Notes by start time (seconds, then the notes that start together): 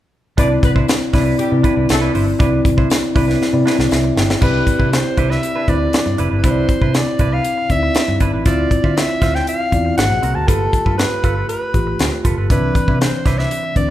0.37 C2 C4 D4 E4 B4 D5, kick, closed hi-hat
0.50 muted clean electric guitar stroke
0.63 C2 B3 B4, muted clean electric guitar stroke, kick, closed hi-hat
0.75 D4 E4 C5, kick
0.88 muted clean electric guitar stroke, snare, closed hi-hat, tambourine
1.01 muted clean electric guitar stroke
1.13 C2 C4 D4 E4 B4 D5, kick, snare, open hi-hat
1.26 D4 E4 B4
1.38 G3 G4, muted clean electric guitar stroke, muted fingered electric bass stroke, closed hi-hat
1.51 C3 C4 E4 B4 D5, muted clean electric guitar stroke
1.63 D4 E4 B4, kick, closed hi-hat
1.76 C2 D4 E4 B4
1.89 C2 A3 A4, muted clean electric guitar stroke, snare, closed hi-hat, tambourine
2.01 D4 E4 B4
2.14 G1 D4 E4 C5, open hi-hat
2.27 muted clean electric guitar stroke
2.39 C2 C4 D4 E4 B4 D5, kick, closed hi-hat
2.52 muted clean electric guitar stroke
2.65 C2, muted clean electric guitar stroke, kick, closed hi-hat
2.78 D4 E4 C5, kick
2.90 muted clean electric guitar stroke, snare, closed hi-hat, tambourine
3.03 muted clean electric guitar stroke
3.15 C2 C4 D4 E4 B4 D5, kick, open hi-hat
3.28 D4 E4 B4, snare
3.42 snare
3.53 C3 C4 E4 B4 D5, muted clean electric guitar stroke
3.66 D4 E4 B4 D5, snare
3.79 C2, muted clean electric guitar stroke, snare
3.91 C2 E5, muted clean electric guitar stroke, snare, tambourine
4.04 muted clean electric guitar stroke
4.16 G1 G5, snare
4.29 muted clean electric guitar stroke, snare
4.41 C2 C4 D4 E4 G4 B4 D5, kick, crash
4.66 muted clean electric guitar stroke, kick, closed hi-hat
4.79 C3 D4 E4 B4, kick
4.92 C5, muted clean electric guitar stroke, snare, closed hi-hat
5.05 muted clean electric guitar stroke
5.17 C2 D4 E4 B4, kick, closed hi-hat
5.30 D4 E4 B4 E5, snare
5.43 muted clean electric guitar stroke, closed hi-hat
5.56 D4 E4 B4
5.68 D2 C4 D4 E4 B4 C5 D5, kick, closed hi-hat
5.75 D5
5.81 muted clean electric guitar stroke
5.93 muted clean electric guitar stroke, snare, closed hi-hat
6.06 G2, muted clean electric guitar stroke
6.18 F1 D4 E4 B4, closed hi-hat
6.31 G1 D4 E4 B4
6.38 B4
6.43 C2 C4 D4 E4 B4 C5, kick, closed hi-hat
6.51 D5
6.69 muted clean electric guitar stroke, kick, closed hi-hat
6.82 C3 D4 E4 B4, kick
6.94 D5, muted clean electric guitar stroke, snare, closed hi-hat
7.07 muted clean electric guitar stroke
7.19 C2 D4 E4 B4, kick, closed hi-hat
7.32 D4 E4 B4 F5
7.45 muted clean electric guitar stroke, closed hi-hat
7.58 muted clean electric guitar stroke
7.70 D2 C4 D#4 B4 D5 E5, kick, closed hi-hat
7.76 E4
7.83 muted clean electric guitar stroke
7.95 muted clean electric guitar stroke, snare, closed hi-hat
8.08 G2, muted clean electric guitar stroke
8.20 G1 D4 E4 B4, kick, closed hi-hat
8.34 A1 D4 E4 B4
8.45 D2 C4 E4 F4 C5 D5 E5, kick, closed hi-hat
8.71 muted clean electric guitar stroke, kick, closed hi-hat
8.84 D3 F4 C5 E5, kick
8.97 E5, muted clean electric guitar stroke, snare, closed hi-hat
9.09 muted clean electric guitar stroke
9.22 D2 F4 C5 E5, kick, snare, closed hi-hat
9.34 F4 C5 E5 G5, snare
9.47 F5, muted clean electric guitar stroke, closed hi-hat
9.60 muted clean electric guitar stroke
9.72 E2 C4 E4 F4 D5, kick, closed hi-hat
9.85 muted clean electric guitar stroke
9.97 G#1 A#3 F#4 G#4 C5 F#5, muted clean electric guitar stroke, snare, closed hi-hat
10.10 A#1, muted clean electric guitar stroke
10.23 C2 C4 F#4 A#4, closed hi-hat
10.35 D2 C4 F#4 A#4 A5
10.48 G1 A3 F4 G4 A4 B4, kick, closed hi-hat
10.73 muted clean electric guitar stroke, kick, closed hi-hat
10.86 G2 F4 A4 B4, kick
10.97 B4, muted clean electric guitar stroke, snare, closed hi-hat
11.11 muted clean electric guitar stroke
11.24 G1 F4 A4 B4, kick, closed hi-hat
11.36 F4 A4 B4
11.49 B4, muted clean electric guitar stroke, closed hi-hat
11.62 muted clean electric guitar stroke
11.74 A1 A3 F4 G4 B4, kick, closed hi-hat
11.87 muted clean electric guitar stroke
11.99 D2, muted clean electric guitar stroke, snare, closed hi-hat
12.12 muted clean electric guitar stroke
12.25 F1 F4 A4 B4, kick, closed hi-hat
12.38 G1 F4 A4 B4
12.50 C2 D3 C4 D4 E4 B4 D5, kick, closed hi-hat
12.56 E3
12.75 muted clean electric guitar stroke, kick, closed hi-hat
12.88 C3 D4 E4 B4, kick
13.01 C5, muted clean electric guitar stroke, snare, closed hi-hat
13.13 muted clean electric guitar stroke
13.25 C2 D4 E4 B4, kick, snare, closed hi-hat
13.38 D4 E4 B4 E5, snare
13.51 muted clean electric guitar stroke, closed hi-hat
13.63 muted clean electric guitar stroke
13.76 D2 E3 C4 D4 B4 D5, kick, closed hi-hat